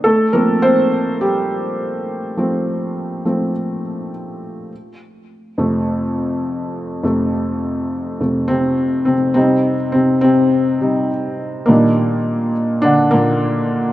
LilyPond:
\new Staff \with { instrumentName = "Felt piano" } { \time 4/4 \key f \mixolydian \tempo 4 = 103 << { <a a'>8 <bes bes'>8 <c' c''>4 <g g'>2~ | <g g'>2. r4 | r1 | r2 r8 <c c'>4 <c c'>8 |
c'4 <c c'>8 <c c'>2~ <c c'>8 | <bes, bes>2 <d d'>8 <bes, bes>4. | } \\ { r8 <f a c'>4. r2 | <f a c'>4. <f a c'>8 r2 | r4. <f, c a>2~ <f, c a>8 | <f, c a>2 <f, c a>8 r4. |
<c g ees'>8 r2 <c g ees'>8 r4 | <ees g d'>4. r2 r8 | } >> }